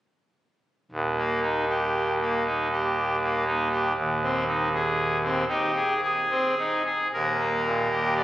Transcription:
pipe organ
0.91 D#1 D#2
1.17 A#3
1.42 D#4
1.69 G4
2.21 A#3
2.46 D#4
2.72 G4
3.22 A#3
3.46 D#4
3.71 G4
3.96 D#1 D#2
4.22 C4
4.48 D#4
4.74 G#4
5.23 C4
5.48 D#4 G4
5.76 G#4
6.02 G#4
6.30 C4
6.59 D#4
6.85 G#4
7.13 D#1 D#2 A#4
7.39 A#3
7.64 A#2
7.91 G4
8.16 D5

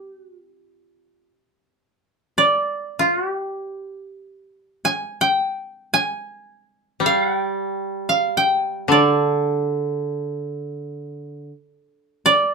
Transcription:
koto
Already playing: G4 G5
0.17 F#4
0.39 F4
2.38 D5
2.99 F4
3.26 G4
4.85 G#5
5.21 G5
5.94 G#5
7.00 G3
7.06 F5
7.24 F#5
7.35 G5
8.09 F5
8.37 G5
8.88 D3 D5
12.26 D5

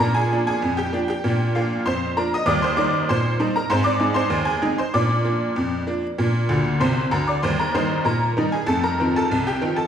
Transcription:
honky-tonk piano
0.00 A#2 D4 A#4 A#5
0.14 G#4 G#5
0.32 F3 A#3 D4
0.47 G#4 G#5
0.62 F2
0.77 G4 G5
0.93 F3 A#3 D4
1.08 G4 G5
1.24 A#2 D4
1.55 F3 A#3 D4 F4 F5
1.86 F2 C5 C6
2.17 F3 A#3 D4 A#4 A#5
2.34 D#5 D#6
2.46 D#2 G3 D5 D6
2.62 C5 C6
2.77 G3 A#3 D#4 D5 D6
3.09 A#2 C5 C6
3.40 G3 A#3 D#4
3.56 A#4 A#5
3.70 G#2 C4 C5 C6
3.84 D5 D6
4.00 G#3 C4 D#4
4.14 C5 C6
4.30 D#2
4.45 G#4 G#5
4.62 G#3 C4 D#4
4.78 C5 C6
4.94 A#2 D4 D5 D6
5.24 F3 A#3 D4
5.56 F2
5.87 F3 A#3 D4
6.18 A#2 D4
6.49 D2 D3
6.80 C2 C3 C5 C6
7.11 D2 D3 A#4 A#5
7.27 D5 D6
7.42 D#2 G3 C5 C6
7.59 A#4 A#5
7.74 D#3 G3 D#4 C5 C6
8.05 A#2 A#4 A#5
8.37 D#3 G3 D#4
8.52 G#4 G#5
8.66 F2 A3 A4 A5
8.83 A#4 A#5
9.00 D#3 F3 C4
9.16 A4 A5
9.31 C2
9.47 G4 G5
9.62 D#3 F3 C4
9.77 A4 A5

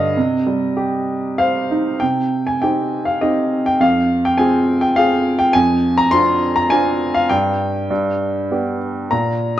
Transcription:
upright piano
Already playing: G2 D3 D#5 F5
0.17 C3
0.47 G3
0.77 G4
1.38 C5 F5
1.71 D#4
2.00 C3 G5
2.47 G#5
2.62 C4 D#4 G4 G5
3.05 F5
3.21 C4 D#4 G4 D#5
3.66 G5
3.80 F2 F5
4.25 G5
4.38 C4 F4 G#4 G#5
4.81 G5
4.96 C4 F4 G#4 F5
5.39 G5
5.53 F2 G#5
5.98 A#5
6.11 C4 D4 F4 C6
6.56 A#5
6.70 C4 D4 F4 G#5
7.14 F5
7.29 G2 G5
7.90 G2
8.51 B3 D4 G4
9.11 A#2 A#5

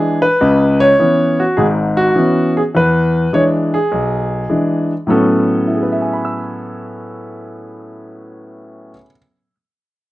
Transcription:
grand piano
Already playing: E3 G#3 D4 G#4
0.22 B4
0.41 C#2 C#3
0.80 C#5
0.99 E3 B3 C#4
1.40 F#4
1.57 G#1 G#2 G#4
1.97 F#4
2.15 E3 B3 C#4
2.57 G#4
2.75 E2 B4
3.33 E3 G#3 D4 C#5
3.74 G#4
3.92 B1
4.49 E3 G#3 D4
5.07 A2 F#3 B3 C#4 A4
5.67 E4
5.75 G#4
5.83 B4
5.92 E5
6.02 G#5
6.13 B5
6.25 E6

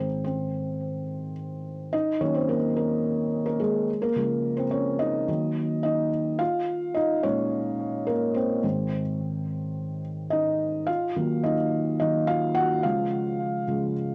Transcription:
felt piano
Already playing: G#2 D#3 C4 C5
0.24 C4 C5
1.93 D#4 D#5
2.20 D#3 F#3 A#3 C#4 C#5
2.34 C4 C5
2.49 A#3 A#4
2.76 A#3 A#4
3.46 A#3 A#4
3.60 G#3 G#4
4.02 A#3 A#4
4.16 C#3 F3 G#3
4.57 C4 C5
4.71 C#4 C#5
4.99 D#4 D#5
5.28 D#3 F#3 A#3
5.83 D#4 D#5
6.39 F4 F5
6.94 D#4 D#5
7.23 A#2 G#3 C#4 C#5
8.07 A#3 A#4
8.34 C4 C5
8.63 G#2 D#3 C4
10.30 D#4 D#5
10.86 F4 F5
11.16 D#3 F#3 A#3
11.43 D#4 D#5
11.99 D#3 F#3 A#3 D#4 D#5
12.27 F4 F5
12.55 F#4 F#5
12.83 C#3 F3 G#3 F4 F5
13.68 C#3 F3 G#3

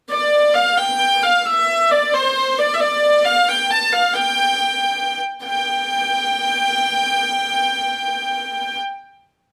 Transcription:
hurdy-gurdy
0.10 D5
0.54 F5
0.78 G5
1.23 F5
1.46 E5
1.91 D5
2.14 C5
2.59 D5
2.74 E5
2.80 D5
3.25 F5
3.49 G5
3.71 A5
3.93 F5
4.14 G5
5.44 G5

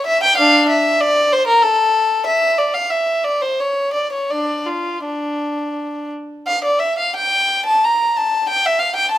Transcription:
violin
0.06 E5
0.23 G5
0.37 D4 F5
0.69 E5
1.01 D5
1.32 C5
1.47 A#4
1.62 A4
2.27 E5
2.58 D5
2.74 F5
2.90 E5
3.24 D5
3.41 C5
3.60 C#5
3.93 D5
4.13 C#5
4.30 D4 D5
4.67 F4
5.05 D4
6.47 F5
6.64 D5
6.79 E5
6.99 F5
7.16 G5
7.66 A5
7.84 A#5
8.16 A5
8.49 G5
8.66 E5
8.79 F5
8.96 G5
9.11 A5

